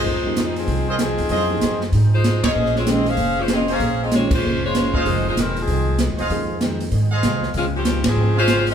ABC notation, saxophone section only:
X:1
M:4/4
L:1/8
Q:"Swing" 1/4=192
K:Fm
V:1 name="Saxophone section"
[A,EFc]3 [F,CEA]2 [G,CEB] [F,CEA]2- | [F,CEA]3 z2 [A,EFc]2 [DAce]- | [DAce] [A,CFd] [CFAe] [DAcf]2 [A,DFc] [CFAe] [DAcf]- | [DAcf] [CFAe] [A,CFd] [A,DFc]2 [A,Fcd]2 [A,EFc]- |
[A,EFc] [A,EFc] [G,CEB] [F,CEA]3 z2 | z8 | [A,CDF] [F,CDG]2 [F,CDA]2 [A,DFc]2 [Dc] |]